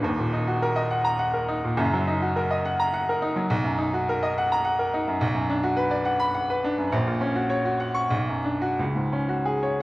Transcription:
0.02 1.74 D#1 medium
0.02 1.75 D#2 medium
0.19 0.43 A#2 medium
0.33 0.57 D#4 medium
0.47 0.71 F#4 medium
0.62 0.85 A#4 medium
0.76 0.99 D#5 medium
0.91 1.14 F#5 medium
1.04 1.28 A#5 medium
1.19 1.43 F#5 medium
1.34 1.58 A#4 medium
1.48 1.73 D#4 medium
1.64 1.79 A#2 medium
1.77 3.46 F#1 medium
1.77 3.46 F#2 medium
1.93 2.16 F#3 medium
2.08 2.31 D#4 medium
2.22 2.45 F#4 medium
2.36 2.59 A#4 medium
2.51 2.73 D#5 medium
2.65 2.88 F#5 medium
2.80 3.02 A#5 loud
2.94 3.17 F#5 medium
3.09 3.31 A#4 medium
3.22 3.45 D#4 medium
3.36 3.50 F#3 medium
3.50 5.18 B1 medium
3.64 3.88 F#2 medium
3.78 4.02 D#4 medium
3.94 4.17 F#4 medium
4.09 4.32 A#4 medium
4.23 4.46 D#5 medium
4.38 4.60 F#5 medium
4.52 4.74 A#5 medium
4.65 4.88 F#5 medium
4.79 5.02 A#4 medium
4.94 5.16 D#4 medium
5.08 5.22 F#2 medium
5.21 6.89 B1 medium
5.35 5.58 F#2 medium
5.50 5.73 D4 medium
5.63 5.87 F#4 medium
5.77 6.00 B4 medium
5.91 6.15 D5 medium
6.05 6.29 F#5 medium
6.20 6.44 B5 loud
6.34 6.58 F#5 medium
6.50 6.73 B4 medium
6.64 6.87 D4 medium
6.78 6.93 F#2 medium
6.92 8.08 A#1 medium
7.07 7.30 A#2 medium
7.21 7.45 C#4 medium
7.35 7.60 F#4 medium
7.50 7.74 C#5 medium
7.65 7.90 F#4 medium
7.80 8.05 F#5 medium
7.94 8.11 C#6 medium
8.10 8.75 B1 medium
8.28 8.55 F#2 medium
8.44 8.71 D4 medium
8.61 8.78 F#4 medium
8.79 9.82 C#2 medium
8.95 9.22 G#2 medium
9.12 9.39 C#4 medium
9.29 9.56 F#4 medium
9.46 9.73 G#4 medium
9.63 9.82 C#5 medium

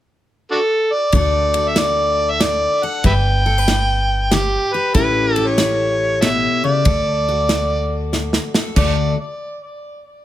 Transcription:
0.51 0.59 D4 medium
0.51 0.60 F#4 medium
0.51 0.94 A4 medium
0.93 1.14 D5 medium
1.12 2.64 D2 medium
1.12 1.73 D3 medium
1.12 1.76 A3 medium
1.12 3.02 D4 medium
1.12 1.54 F#4 medium
1.12 1.70 D5 medium
1.12 kick loud
1.12 ride medium
1.17 2.82 A4 medium
1.54 3.02 F#4 soft
1.54 ride medium
1.68 1.80 E5 medium
1.76 2.36 A3 medium
1.76 2.32 D5 medium
1.76 snare medium
1.76 ride medium
2.30 2.43 E5 medium
2.40 3.00 A2 medium
2.40 2.85 D5 loud
2.40 snare medium
2.40 ride medium
2.83 3.05 A4 medium
2.83 3.05 F#5 medium
3.04 4.55 G1 medium
3.04 3.64 G3 medium
3.04 3.45 B4 medium
3.04 3.13 B4 medium
3.04 3.13 E5 medium
3.04 4.34 G5 loud
3.04 kick loud
3.04 ride medium
3.46 3.58 A4 medium
3.58 4.95 B4 soft
3.68 4.28 D4 medium
3.68 snare medium
3.68 ride medium
4.31 4.91 D3 medium
4.31 4.74 G4 medium
4.31 snare medium
4.31 ride medium
4.73 4.93 G4 medium
4.73 4.94 B4 medium
4.94 6.46 A1 medium
4.94 5.54 A2 medium
4.94 5.58 C#4 medium
4.94 6.84 E4 medium
4.94 5.36 G4 medium
4.94 6.86 A4 medium
4.94 5.34 B4 loud
4.94 kick loud
4.94 ride medium
5.34 6.83 G4 medium
5.34 5.48 A4 loud
5.34 ride medium
5.47 6.21 C#5 medium
5.58 6.18 C#4 medium
5.58 snare medium
5.58 ride medium
6.21 6.63 B2 medium
6.21 6.28 A4 medium
6.21 6.29 C#5 medium
6.21 6.60 E5 loud
6.21 snare medium
6.21 ride medium
6.64 6.86 C#3 medium
6.64 8.09 D5 medium
6.85 8.37 D2 medium
6.85 7.45 D3 medium
6.85 8.54 A4 medium
6.85 kick loud
6.85 ride medium
7.28 8.74 F#4 medium
7.49 8.08 A3 medium
7.49 snare medium
7.49 ride medium
8.13 8.72 A2 medium
8.13 snare medium
8.33 snare medium
8.54 8.78 A4 medium
8.54 snare medium
8.76 9.15 D2 medium
8.76 9.14 D3 medium
8.76 9.14 A3 medium
8.76 9.14 D4 medium
8.76 9.15 F#4 medium
8.76 9.15 A4 medium
8.76 9.16 D5 medium
8.76 kick loud
8.76 crash medium

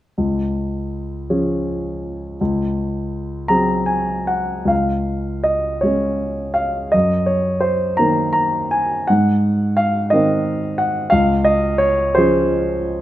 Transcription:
0.18 1.26 C#2 soft
1.30 2.36 F3 soft
1.30 2.36 C#4 soft
1.30 2.36 G#4 soft
2.41 3.48 C#2 soft
3.48 4.66 F#3 soft
3.48 4.67 C4 soft
3.48 4.67 G#4 soft
3.48 3.89 A#5 medium
3.86 4.29 G#5 medium
4.27 4.69 F#5 medium
4.65 5.76 C#2 soft
4.65 5.44 F5 medium
5.44 5.82 D#5 soft
5.81 6.90 G#3 soft
5.81 6.90 C#4 soft
5.81 6.90 G#4 soft
5.81 6.57 C#5 medium
6.54 6.92 F5 medium
6.92 7.96 F#2 soft
6.92 7.28 D#5 medium
7.26 7.63 C#5 medium
7.61 7.98 C5 medium
7.97 9.03 D#3 soft
7.97 9.03 A#3 soft
7.97 9.03 A#4 soft
7.97 8.31 A#5 medium
8.33 8.71 A#5 medium
8.71 9.07 G#5 medium
9.07 10.09 G#2 soft
9.07 9.76 F#5 medium
9.77 10.11 F5 medium
10.10 11.09 D#3 soft
10.10 11.09 C4 soft
10.10 11.09 A#4 soft
10.10 10.79 D#5 medium
10.78 11.12 F#5 medium
11.10 12.12 C#2 soft
11.10 11.45 F5 medium
11.45 11.80 D#5 medium
11.78 12.14 C#5 medium
12.15 13.02 F3 soft
12.15 13.02 C#4 soft
12.15 13.02 G#4 soft
12.15 12.50 C5 medium

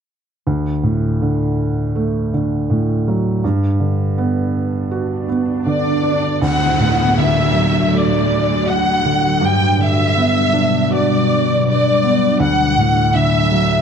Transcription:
0.45 3.40 D2 soft
0.45 swell soft
0.83 2.28 A2 soft
1.22 2.32 D3 soft
1.95 3.40 A3 soft
2.34 3.41 D3 soft
2.70 3.41 A2 soft
3.08 3.43 F#3 soft
3.44 6.38 G2 soft
3.80 5.24 D3 soft
4.18 5.27 B3 soft
4.91 6.38 F#4 soft
5.29 6.38 B3 soft
5.66 6.40 D3 soft
5.66 6.38 D5 medium
6.03 6.40 D4 soft
6.42 9.38 D2 medium
6.42 9.39 A2 medium
6.42 9.39 F#3 medium
6.42 9.39 D4 medium
6.42 9.40 F#4 medium
6.42 7.19 F#5 medium
6.42 downlifter medium
6.80 8.26 A2 soft
7.18 8.64 D3 soft
7.18 7.94 E5 medium
7.54 9.01 F#3 soft
7.93 9.38 A3 soft
7.93 8.68 D5 medium
8.69 9.43 F#5 medium
9.05 9.41 D3 soft
9.41 12.35 G2 medium
9.41 12.36 B2 medium
9.41 12.36 F#3 medium
9.41 12.36 G3 medium
9.41 13.81 D4 medium
9.45 9.81 G5 medium
9.79 11.24 D3 soft
9.79 10.92 E5 medium
10.17 11.61 B3 soft
10.54 11.98 D4 soft
10.90 12.35 F#4 soft
10.90 11.62 D5 medium
11.68 12.37 D5 medium
12.03 12.39 B3 soft
12.40 13.81 D2 medium
12.40 13.81 A2 medium
12.40 13.81 F#3 medium
12.40 13.81 A4 medium
12.40 13.15 F#5 medium
12.78 13.81 A2 soft
13.15 13.81 D3 soft
13.15 13.81 E5 medium
13.52 13.81 F#3 soft

